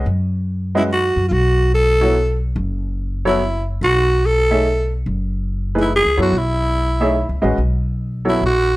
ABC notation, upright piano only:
X:1
M:3/4
L:1/8
Q:"Swing" 1/4=144
K:Bmix
V:1 name="Upright piano"
z3 [G,CFBd] z2 | z3 [F,B,EAc] z2 | z3 [F,B,EAc] z2 | z3 [A,DGce] z2 |
z3 [E,A,DGB] z [F,B,EAc] | z3 [A,DGce] z [G,CFBd] | z3 [F,B,EAc] z2 |]